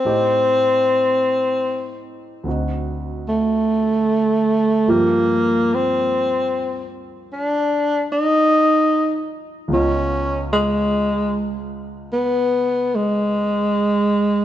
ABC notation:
X:1
M:4/4
L:1/8
Q:"Swing" 1/4=50
K:Gphr
V:1 name="Grand piano"
[=A,,=A,CEG]4 [D,,D,CE^F]4 | [G,,F,B,FG]8 | [_D,,_D,_CEF]8 |]
V:2 name="Tenor saxophone"
C3 z2 =A,3 | B, C2 z D E2 z | _D A,2 z _C A,3 |]